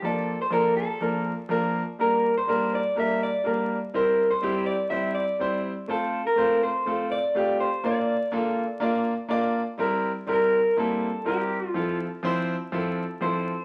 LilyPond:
<<
  \new Staff \with { instrumentName = "Clean electric guitar" } { \time 4/4 \key c \mixolydian \tempo 4 = 123 a'8. c''16 bes'8 a'4 r4. | bes'8. c''8. d''8 e''8 d''4 r8 | bes'8. c''8. d''8 e''8 d''4 r8 | a'8. bes'8. c''4 d''4 c''8 |
d''2. r4 | r4 bes'4 a'4 g'4 | f'8 r2 r8 c''4 | }
  \new Staff \with { instrumentName = "Grand piano" } { \time 4/4 \key c \mixolydian <f bes d' d''>8 r8 <f bes d' a'>8 r8 <f bes d' bes'>8 r8 <f bes d' bes'>8 r8 | <g bes d' bes'>8 r8 <g bes d' bes'>8 r8 <g bes d' bes'>8 r8 <g bes d' bes'>8 r8 | <g c' e' c''>8 r8 <g c' e' g'>8 r8 <g c' e' c''>8 r8 <g c' e' c''>8 r8 | <a c' f' c''>8 r8 <a c' f' c''>8 r8 <a c' f' a'>8 r8 <a c' f' g'>8 r8 |
<bes d' f' d''>8 r8 <bes d' f' a'>8 r8 <bes d' f' d''>8 r8 <bes d' f' d''>8 r8 | <g c' e' bes'>8 r8 <g c' e' bes'>8 r8 <g bes c' e'>8 r8 <g c' e' bes'>8 r8 | <f c' e' a'>8 r8 <f c' e' c''>8 r8 <f c' e' a'>8 r8 <f c' e' a'>8 r8 | }
>>